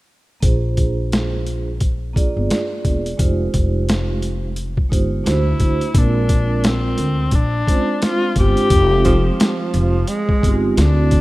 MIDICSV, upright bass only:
0, 0, Header, 1, 2, 480
1, 0, Start_track
1, 0, Tempo, 689655
1, 299, Time_signature, 4, 2, 24, 8
1, 7801, End_track
2, 0, Start_track
2, 0, Title_t, "Upright bass"
2, 0, Program_c, 0, 32
2, 297, Note_on_c, 0, 34, 89
2, 1616, Note_off_c, 0, 34, 0
2, 1646, Note_on_c, 0, 31, 77
2, 1724, Note_off_c, 0, 31, 0
2, 1982, Note_on_c, 0, 28, 76
2, 2180, Note_off_c, 0, 28, 0
2, 2222, Note_on_c, 0, 29, 90
2, 2420, Note_off_c, 0, 29, 0
2, 2466, Note_on_c, 0, 29, 92
2, 3394, Note_off_c, 0, 29, 0
2, 3426, Note_on_c, 0, 31, 66
2, 3622, Note_off_c, 0, 31, 0
2, 3660, Note_on_c, 0, 38, 90
2, 3859, Note_off_c, 0, 38, 0
2, 3899, Note_on_c, 0, 38, 73
2, 4020, Note_off_c, 0, 38, 0
2, 4138, Note_on_c, 0, 34, 104
2, 4830, Note_off_c, 0, 34, 0
2, 4858, Note_on_c, 0, 38, 86
2, 5058, Note_off_c, 0, 38, 0
2, 5097, Note_on_c, 0, 34, 89
2, 5297, Note_off_c, 0, 34, 0
2, 5819, Note_on_c, 0, 31, 78
2, 5940, Note_off_c, 0, 31, 0
2, 6058, Note_on_c, 0, 29, 108
2, 6458, Note_off_c, 0, 29, 0
2, 6779, Note_on_c, 0, 29, 98
2, 6979, Note_off_c, 0, 29, 0
2, 7261, Note_on_c, 0, 31, 78
2, 7460, Note_off_c, 0, 31, 0
2, 7498, Note_on_c, 0, 38, 93
2, 7801, Note_off_c, 0, 38, 0
2, 7801, End_track
0, 0, End_of_file